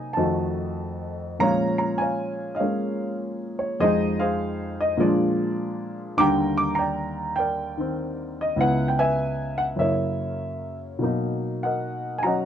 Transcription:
0.00 0.15 C3 medium
0.00 0.17 F#3 soft
0.00 0.19 A#3 soft
0.00 0.20 D#4 medium
0.00 0.14 D#5 medium
0.00 0.18 G#5 medium
0.13 1.40 F2 medium
0.13 1.40 D#3 soft
0.13 1.36 D#5 medium
0.13 1.14 A5 medium
0.18 1.41 A3 soft
0.18 1.41 F#4 medium
1.39 3.81 A#2 medium
1.39 3.80 F3 soft
1.39 2.59 G#3 soft
1.39 2.62 C#4 medium
1.39 2.00 C#5 medium
1.39 2.00 F5 medium
1.39 1.77 A#5 medium
1.78 2.01 A#5 medium
1.98 2.59 C#5 medium
1.98 2.55 F5 medium
1.98 2.57 G#5 medium
2.55 2.61 D#5 medium
2.55 3.15 F5 medium
2.60 3.81 G#3 soft
2.60 3.81 A#3 soft
2.60 3.82 C#4 soft
2.60 3.76 G#4 soft
2.60 3.57 C#5 soft
3.59 3.79 C#5 medium
3.80 4.99 F2 medium
3.80 4.98 F3 soft
3.80 4.99 G#3 medium
3.80 4.19 G#4 medium
3.80 4.18 C5 medium
3.80 4.22 D#5 medium
3.84 5.01 D#4 medium
4.20 4.96 G#4 medium
4.20 4.95 C5 medium
4.20 4.81 F5 medium
4.81 5.01 D#5 medium
4.97 6.17 A#2 medium
4.97 6.18 F3 medium
4.97 6.19 G#3 medium
4.97 6.14 F4 medium
4.97 6.14 G#4 medium
4.97 5.95 D5 medium
5.03 6.20 D4 medium
6.17 8.56 D#2 medium
6.17 7.76 D#3 medium
6.17 8.58 G3 medium
6.17 6.77 G5 medium
6.17 6.74 A#5 medium
6.17 6.27 D6 loud
6.22 8.59 D3 medium
6.58 6.76 D6 medium
6.75 7.37 D5 medium
6.75 7.34 G5 medium
6.75 7.32 A#5 medium
7.36 8.54 A#4 medium
7.36 8.53 D5 medium
7.36 7.92 G5 medium
7.78 8.57 D#3 soft
7.78 8.59 C4 medium
8.41 8.60 D#5 medium
8.56 9.77 C#2 medium
8.56 9.76 C#3 medium
8.56 9.78 B3 soft
8.56 9.78 E4 medium
8.61 8.97 B4 medium
8.61 8.87 F#5 medium
8.88 8.97 G5 medium
8.99 9.74 B4 medium
8.99 9.75 E5 medium
8.99 9.60 G#5 medium
9.58 9.63 F#5 medium
9.76 11.01 F#2 soft
9.76 11.01 C#3 soft
9.76 11.00 A#3 soft
9.76 10.77 E5 medium
9.80 11.03 E4 medium
9.80 10.99 A#4 soft
9.80 10.99 C#5 medium
10.99 12.45 B2 medium
10.99 12.22 F#3 soft
10.99 12.45 A#3 soft
11.04 12.45 D#4 medium
11.63 12.45 A#4 soft
11.63 12.25 D#5 soft
11.63 12.21 F#5 medium
12.18 12.23 G#5 medium
12.23 12.45 F#3 soft
12.23 12.45 C#4 soft
12.23 12.45 D#5 medium
12.23 12.45 F#5 medium
12.23 12.45 A#5 medium

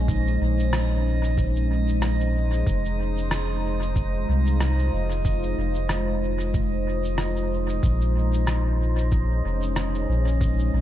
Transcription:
0.00 0.38 A#1 medium
0.00 7.81 G#3 medium
0.00 2.67 C#4 medium
0.00 10.81 D#4 medium
0.00 10.81 C5 medium
0.00 10.81 D#5 medium
0.08 kick loud
0.08 shaker soft
0.27 shaker soft
0.41 2.64 A#1 medium
0.60 shaker soft
0.73 cross-stick medium
0.73 shaker soft
1.24 shaker soft
1.37 kick loud
1.37 shaker soft
1.56 shaker soft
1.88 shaker soft
2.02 cross-stick medium
2.02 shaker soft
2.20 shaker soft
2.53 shaker soft
2.67 4.25 F1 medium
2.67 kick loud
2.67 shaker soft
2.85 shaker soft
2.95 8.99 F4 medium
3.18 shaker soft
3.31 cross-stick medium
3.31 shaker soft
3.82 shaker soft
3.96 kick loud
3.96 shaker soft
4.29 4.90 C2 medium
4.47 shaker soft
4.61 cross-stick medium
4.61 shaker soft
4.79 shaker soft
4.93 5.55 F1 medium
5.11 shaker soft
5.25 kick loud
5.25 shaker soft
5.43 shaker soft
5.58 7.81 F1 medium
5.75 shaker soft
5.89 cross-stick medium
5.89 shaker soft
6.40 shaker soft
6.54 kick loud
6.54 shaker soft
7.05 shaker soft
7.18 cross-stick medium
7.18 shaker soft
7.37 shaker soft
7.69 shaker soft
7.83 9.42 A#1 loud
7.83 10.81 G#3 medium
7.83 kick medium
7.83 shaker soft
8.01 10.81 C#4 medium
8.01 shaker soft
8.34 shaker soft
8.47 cross-stick medium
8.47 shaker soft
8.98 shaker soft
9.11 kick medium
9.11 shaker soft
9.45 10.06 F1 medium
9.62 shaker soft
9.76 cross-stick medium
9.76 shaker soft
9.95 shaker soft
10.09 10.71 A#1 medium
10.27 shaker soft
10.41 kick medium
10.41 shaker medium
10.60 shaker soft
10.73 10.81 A#1 medium

